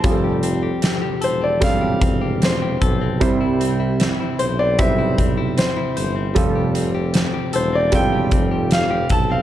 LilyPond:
<<
  \new Staff \with { instrumentName = "Grand piano" } { \time 4/4 \key f \lydian \tempo 4 = 76 a''16 r4 r16 c''16 d''16 f''4 c''8. r16 | r4. c''16 d''16 e''4 c''8. r16 | r4. c''16 d''16 g''4 f''8 a''16 f''16 | }
  \new Staff \with { instrumentName = "Clean electric guitar" } { \time 4/4 \key f \lydian f16 g'16 c'16 g'16 c'16 g'16 a'16 c'16 f16 g'16 c'16 g'16 c'16 g'16 a'16 c'16 | r16 e'16 c'16 e'16 c'16 e'16 c''16 c'8 e'16 c'16 e'16 c'16 e'16 c''16 c'16 | f16 g'16 c'16 g'16 c'16 g'16 a'16 c'16 f16 g'16 c'16 g'16 c'16 g'16 a'16 c'16 | }
  \new Staff \with { instrumentName = "Grand piano" } { \time 4/4 \key f \lydian <g c' f' aes' a'>2 <g c' f' a'>2 | <g c' e' c''>2 <g c' e' c''>2 | <g c' f' a'>2 <g c' f' a'>2 | }
  \new Staff \with { instrumentName = "Grand piano" } { \clef bass \time 4/4 \key f \lydian r1 | c4. r2 r8 | r1 | }
  \new Staff \with { instrumentName = "Tuba" } { \clef bass \time 4/4 \key f \lydian f,,4 r8 e,,2 b,,8 | c,4~ c,16 r16 b,,4. r8 g,,8 | f,,4~ f,,16 r16 e,,4 f,,4 b,,8 | }
  \new DrumStaff \with { instrumentName = "Drums" } \drummode { \time 4/4 <hh bd>8 hh8 <hh sn>8 hh8 <hh bd sn>8 <hh bd>8 <hh sn>8 <hh bd>8 | <hh bd>8 hh8 <hh sn>8 hh8 <hh bd>8 <hh bd>8 <hh sn>8 hh8 | <hh bd>8 hh8 <hh sn>8 hh8 <hh bd>8 <hh bd>8 <hh sn>8 <hh bd>8 | }
>>